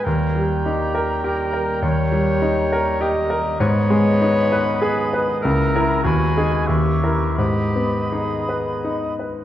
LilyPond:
<<
  \new Staff \with { instrumentName = "Flute" } { \time 3/4 \key gis \minor \tempo 4 = 99 ais''2.~ | ais''2~ ais''8 r8 | b''2. | ais''4 b''4 cis'''4 |
b''2~ b''8 r8 | }
  \new Staff \with { instrumentName = "Cor anglais" } { \time 3/4 \key gis \minor g''2.~ | g''2~ g''8 r8 | dis''2. | e''4 gis''4 e''4 |
dis''2~ dis''8 r8 | }
  \new Staff \with { instrumentName = "Clarinet" } { \time 3/4 \key gis \minor ais'8 r8 g'4 ais'4 | cis''2 dis''4 | cis''2 b'8 r8 | ais'4 fis'4 g'4 |
g'4 gis'4. r8 | }
  \new Staff \with { instrumentName = "Grand piano" } { \time 3/4 \key gis \minor dis,8 g8 dis'8 ais'8 g'8 ais'8 | dis,8 g8 dis'8 ais'8 g'8 ais'8 | gis,8 gis8 dis'8 b'8 gis'8 b'8 | cis,8 <e' ais'>8 dis,8 <dis' gis'>8 dis,8 <e' ais'>8 |
gis,8 b8 dis'8 b'8 dis'8 b'8 | }
  \new Staff \with { instrumentName = "French horn section" } { \time 3/4 \key gis \minor <g ais>2.~ | <g ais>2. | <dis b>2. | <e ais>4 <gis b>4 <e cis'>4 |
<dis b>2~ <dis b>8 r8 | }
>>